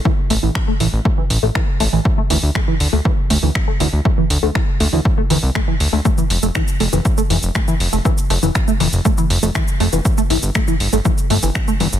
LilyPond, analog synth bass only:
\new Staff \with { instrumentName = "Analog synth bass" } { \clef bass \time 4/4 \key f \major \tempo 4 = 120 r8 a,,16 a,,16 r8 a,,16 a,,16 r8 a,,16 a,,16 r8 a,,16 a,,16 | r8 d,16 d,16 r8 d,16 d,16 r8 d,16 d,16 r8 d,16 d,16 | r8 d,16 d,16 r8 d,16 d,16 r8 d,16 c,16 r8 d,16 d,16 | r8 f,,16 f,,16 r8 f,,16 f,,16 r8 f,,16 f,,16 r8 f,,16 f,,16 |
r8 f,,16 f,,16 r8 f,,16 f,,16 r8 f,,16 f,,16 r8 f,,16 f,,16 | r8 g,,16 g,,16 r8 g,,16 g,,16 r8 g,,16 g,,16 r8 g,,16 g,,16 | }